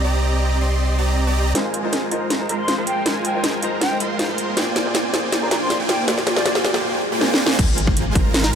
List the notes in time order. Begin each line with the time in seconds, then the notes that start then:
Already playing: C2 C3 C4 D#4 A#4 D6
0.04 C4 G4 D5 D#5 A#5
0.61 C4 G4 D5 D#5 C6
0.98 C4 G4 D5 D#5 A#5
1.27 C4 G4 D5 D#5 A#5
1.54 G#1 G#3 D#4 F4 A#4 C5 G#5, snare, closed hi-hat, riser
1.74 closed hi-hat
1.83 G#3 D#4 F4 A#4 C5
1.93 snare, closed hi-hat
2.11 G#1 G#3 D#4 F4 A#4 C5 A#5, closed hi-hat
2.30 snare, closed hi-hat
2.39 G#3 D#4 F4 A#4 C5 A#5
2.49 G#1 G#3 F4 A#4 C5 A#5 C6, closed hi-hat
2.59 C6
2.67 G#3 D#4 F4 A#4 C5, snare, closed hi-hat
2.78 G#1 G#3 F4 A#4 C5 C6
2.87 G5, closed hi-hat
3.05 G#1 G#3 D#4 F4 A#4 C5 G#5, snare, closed hi-hat
3.25 G5, closed hi-hat
3.33 G#3 D#4 F4 A#4 C5
3.44 snare, closed hi-hat
3.62 G#1 G#3 D#4 F4 A#4 C5 A#5, closed hi-hat
3.81 G5, snare, closed hi-hat
3.90 G#3 D#4 F4 A#4 C5
4.00 G#1 G#3 F4 A#4 C5 C6, closed hi-hat
4.10 F5
4.18 G#3 D#4 F4 A#4 C5 F5, snare, closed hi-hat
4.29 G#1 G#3 F4 A#4 C5 C6
4.38 closed hi-hat
4.56 A#1 A#3 F4 G4 G#4 C5 D5 G5 G#5, snare, closed hi-hat
4.76 snare, closed hi-hat
4.84 A#3 F4 G4 G#4 C5 D5
4.95 snare, closed hi-hat
5.12 A#1 A#3 F4 G4 G#4 C5 D5 G5 G#5, snare, closed hi-hat
5.32 snare, closed hi-hat
5.41 A#3 F4 G4 G#4 C5 D5 A#5
5.51 A#1 A#3 F4 C5 D5 G5 G#5 A#5, snare, closed hi-hat
5.61 C6
5.69 A#3 F4 G4 G#4 C5 D5, snare, closed hi-hat
5.80 A#1 A#3 F4 C5 D5 G5 G#5
5.89 G5, snare, closed hi-hat
6.07 A#1 A#3 F4 G4 G#4 C5 D5 G5 G#5, snare, closed hi-hat
6.18 snare
6.27 D5, snare, closed hi-hat
6.35 A#3 F4 G4 G#4 C5 D5, snare
6.46 snare, closed hi-hat
6.55 snare
6.63 A#1 A#3 F4 G4 G#4 C5 D5 G5 G#5, snare, closed hi-hat
6.74 snare
6.83 swell
7.12 A#3 F4 C5 D5 G5 G#5
7.21 snare
7.34 snare
7.46 snare
7.59 G#1 G#3 F4 A#4 C5 G#5, kick, closed hi-hat, crash, impact
7.78 closed hi-hat
7.87 kick
7.97 closed hi-hat
8.15 G#1 G#3 F4 A#4 C5 A#5, kick, closed hi-hat
8.34 snare, closed hi-hat
8.44 A#5, snare